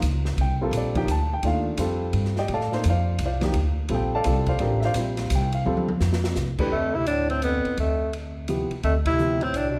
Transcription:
0.02 0.36 C#2 medium
0.02 hi-hat pedal medium
0.02 ride medium
0.25 snare medium
0.37 0.71 C2 medium
0.37 0.61 G5 medium
0.37 ride medium
0.61 0.94 G3 medium
0.61 0.94 C4 medium
0.61 0.94 F4 medium
0.61 0.95 A4 medium
0.61 0.73 A#4 medium
0.71 1.06 A#1 loud
0.71 hi-hat pedal medium
0.71 ride medium
0.77 0.97 D5 medium
0.95 1.07 F3 medium
0.95 1.07 A#3 medium
0.95 1.07 D#4 medium
0.95 1.07 G4 medium
0.95 1.09 G5 medium
0.95 kick medium
0.95 ride soft
1.07 1.42 D2 medium
1.07 hi-hat pedal medium
1.07 ride medium
1.11 1.32 A5 medium
1.33 1.44 G5 medium
1.43 1.77 D#2 medium
1.43 1.77 D#3 medium
1.43 1.78 A3 medium
1.43 1.78 D4 medium
1.43 1.78 F4 medium
1.43 ride medium
1.47 1.99 F5 medium
1.77 2.12 F2 medium
1.77 2.32 G3 medium
1.77 2.32 C4 medium
1.77 2.33 F4 medium
1.77 2.33 A4 medium
1.77 hi-hat pedal medium
1.77 ride medium
2.13 2.48 G2 medium
2.13 ride medium
2.25 snare soft
2.36 2.50 G4 medium
2.36 2.50 D5 medium
2.36 2.50 D#5 medium
2.36 2.50 G5 medium
2.36 snare soft
2.48 2.83 A2 medium
2.48 ride medium
2.54 2.72 A4 medium
2.54 2.84 D5 medium
2.54 2.84 F5 medium
2.54 2.84 A5 medium
2.61 snare soft
2.72 2.83 A#3 medium
2.72 2.83 D#4 medium
2.72 2.84 A4 medium
2.72 2.84 C5 medium
2.72 snare soft
2.84 3.18 F2 medium
2.84 hi-hat pedal medium
2.84 ride medium
2.89 3.20 F4 medium
2.89 3.20 C5 medium
2.89 3.20 D5 medium
2.89 3.20 F5 medium
3.19 3.53 C2 medium
3.19 hi-hat pedal medium
3.19 ride medium
3.25 3.45 F4 medium
3.25 3.45 C5 medium
3.25 3.45 D5 medium
3.25 3.45 F5 medium
3.41 3.53 F3 medium
3.41 3.54 A#3 medium
3.41 3.54 D#4 medium
3.41 3.54 G4 medium
3.41 snare medium
3.41 ride soft
3.54 3.89 D2 medium
3.54 ride medium
3.89 4.24 A#1 medium
3.89 4.23 G3 medium
3.89 4.23 C4 medium
3.89 4.24 F4 medium
3.89 4.14 A4 medium
3.89 ride medium
3.94 4.14 G4 medium
3.94 4.14 G5 medium
4.15 4.25 A4 medium
4.15 4.47 D5 medium
4.15 4.47 F5 medium
4.15 4.47 A5 loud
4.24 4.60 C2 medium
4.24 4.78 G3 medium
4.24 4.78 C4 medium
4.24 4.47 F4 medium
4.24 4.58 A4 medium
4.24 hi-hat pedal medium
4.24 ride medium
4.46 4.81 F4 medium
4.46 4.81 C5 medium
4.46 4.81 D5 medium
4.46 4.81 F5 medium
4.46 kick medium
4.46 ride soft
4.59 4.94 A1 medium
4.59 4.94 D4 medium
4.59 4.95 G4 medium
4.59 4.94 A4 medium
4.59 4.95 A#4 medium
4.59 ride medium
4.80 4.82 E5 medium
4.80 snare soft
4.85 4.92 F4 medium
4.85 4.92 C5 medium
4.85 4.92 D5 medium
4.85 4.92 F5 loud
4.94 5.29 A#1 loud
4.94 5.49 G3 medium
4.94 5.49 C4 medium
4.94 5.49 F4 medium
4.94 5.50 C5 medium
4.94 hi-hat pedal medium
4.94 ride medium
5.17 snare medium
5.17 ride medium
5.30 5.65 C2 medium
5.30 hi-hat pedal medium
5.30 ride medium
5.35 5.55 G5 medium
5.52 5.99 F5 medium
5.52 ride medium
5.65 6.00 D2 medium
5.65 5.86 G3 medium
5.65 5.87 C4 medium
5.65 5.87 F4 medium
5.65 5.87 A4 medium
5.65 mid tom medium
5.77 mid tom medium
5.88 mid tom medium
6.00 6.35 F2 loud
6.00 snare medium
6.00 hi-hat pedal medium
6.13 snare medium
6.24 snare medium
6.36 6.57 C2 loud
6.36 snare medium
6.36 hi-hat pedal medium
6.58 6.70 E3 medium
6.58 6.71 A3 medium
6.58 6.71 D4 medium
6.58 6.71 G4 medium
6.58 6.71 B4 medium
6.58 muted upright bass stroke soft
6.58 kick medium
6.58 crash medium
6.71 7.61 D2 medium
6.71 6.97 F2 medium
6.71 6.96 A3 medium
6.95 7.07 C3 medium
6.95 7.07 E4 medium
7.06 7.29 A2 medium
7.06 7.28 D4 medium
7.06 hi-hat pedal medium
7.06 ride medium
7.30 7.42 A2 medium
7.30 7.42 C4 medium
7.30 ride soft
7.42 7.75 F2 medium
7.42 7.76 B3 medium
7.42 hi-hat pedal medium
7.42 ride medium
7.65 muted upright bass stroke soft
7.65 ride soft
7.77 8.67 D2 medium
7.77 8.11 F2 medium
7.77 8.12 A3 medium
7.77 ride medium
8.13 ride medium
8.48 8.69 C3 medium
8.48 8.69 F3 medium
8.48 8.69 B3 medium
8.48 8.69 E4 soft
8.48 8.70 G4 medium
8.48 hi-hat pedal medium
8.48 ride medium
8.71 muted upright bass stroke soft
8.71 ride soft
8.83 9.50 D2 medium
8.83 8.95 F2 medium
8.83 8.94 A3 medium
8.83 ride medium
9.06 9.44 C3 medium
9.06 9.44 E4 loud
9.06 kick medium
9.06 ride medium
9.19 9.39 C3 medium
9.19 9.40 F3 medium
9.19 9.40 B3 medium
9.19 9.40 E4 medium
9.19 9.40 G4 medium
9.19 hi-hat pedal medium
9.41 9.55 A2 medium
9.41 9.58 C4 medium
9.41 ride soft
9.53 9.79 C2 medium
9.53 9.71 A2 medium
9.53 9.69 D4 medium
9.53 hi-hat pedal medium
9.53 ride medium
9.69 9.79 B2 medium
9.69 9.79 D4 medium

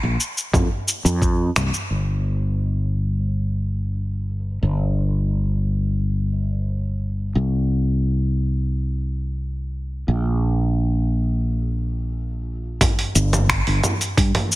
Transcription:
0.03 0.16 A#1 loud
0.20 shaker medium
0.37 shaker soft
0.53 0.67 F2 medium
0.53 kick loud
0.53 mid tom medium
0.53 shaker soft
0.88 shaker medium
1.05 1.49 F2 loud
1.05 shaker soft
1.22 kick medium
1.22 shaker soft
1.56 1.69 C2 medium
1.56 finger snap medium
1.56 mid tom medium
1.56 shaker medium
1.74 shaker soft
1.90 4.60 G1 medium
4.63 7.32 G1 medium
7.35 10.05 C2 medium
10.08 12.78 A#1 medium
12.81 kick loud
12.81 mid tom medium
12.81 open hi-hat medium
12.81 shaker soft
12.99 open hi-hat soft
13.15 13.60 G1 loud
13.15 shaker medium
13.33 mid tom medium
13.33 shaker soft
13.49 finger snap loud
13.49 kick loud
13.49 open hi-hat medium
13.49 shaker soft
13.67 13.79 G1 loud
13.67 open hi-hat soft
13.84 mid tom medium
13.84 shaker medium
14.01 open hi-hat soft
14.01 shaker soft
14.17 14.31 G2 medium
14.17 kick loud
14.17 open hi-hat medium
14.17 shaker soft
14.35 mid tom medium
14.35 open hi-hat medium
14.52 shaker medium

